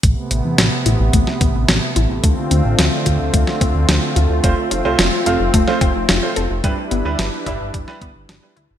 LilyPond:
<<
  \new Staff \with { instrumentName = "Grand piano" } { \time 4/4 \key a \minor \tempo 4 = 109 r1 | r1 | <a c' f' c''>16 r8 <a c' f' c''>16 r8 <a c' f' f''>16 r8 <a c' f' c''>16 r8. <a c' f' c''>16 r8 | <g d' e' b'>16 r8 <g d' e' b'>16 r8 <g d' e' e''>16 r8 <g d' e' b'>16 r8. <g d' e' b'>16 r8 | }
  \new Staff \with { instrumentName = "Analog synth pad" } { \time 4/4 \key a \minor << { <c b>1 | f'1~ | f'1 | <d' b'>1 | } \\ { a1 | <d c'>1 | c'1 | <g e'>1 | } >> }
  \new Staff \with { instrumentName = "Synth arpeggio sound" } { \time 4/4 \key a \minor a8 b16 r16 c'16 r16 e'8 a8 b8 c'8 e'8 | a8 c'8 d'16 r16 f'8 a8 c'8 d'16 r16 f'16 r16 | a8 c'16 r16 f'16 r16 a'8 a8 c'8 f'8 a'8 | g8 b8 d'16 r16 e'8 g8 b8 d'16 r16 e'16 r16 | }
  \new Staff \with { instrumentName = "Analog synth bass" } { \clef bass \time 4/4 \key a \minor a,,16 r16 a,,16 e,16 a,,16 r16 a,,16 a,,16 a,,16 r16 a,,16 a,,16 a,,16 r16 a,,16 a,,16 | d,16 r16 d,16 a,,16 d,16 r16 d,16 d,16 d,16 r16 d,16 d,16 d,16 r16 d,16 d,16 | f,,16 r16 f,,16 c,16 f,,16 r16 f,,16 f,,16 f,,16 r16 f,,16 f,,16 f,,16 r16 f,,16 f,,16 | g,,16 r16 g,,16 d,16 g,,16 r16 g,,16 g,,16 g,,16 r16 g,,16 g,,16 g,,16 r16 d,16 g,,16 | }
  \new DrumStaff \with { instrumentName = "Drums" } \drummode { \time 4/4 <hh bd>8 hh8 <hh sn>8 hh8 <hh bd>16 sn16 <hh bd>8 <hh sn>8 hh8 | <hh bd>8 hh8 <hh sn>8 <hh bd>8 <hh bd>16 sn16 <hh bd>8 <hh sn>8 hh8 | <hh bd>8 hh8 <hh sn>8 hh8 <hh bd>16 sn16 <hh bd>8 <hh sn>8 hh8 | <hh bd>8 hh8 <hh sn>8 <hh bd>8 <hh bd>16 sn16 <hh bd>8 <hh sn>8 hh8 | }
>>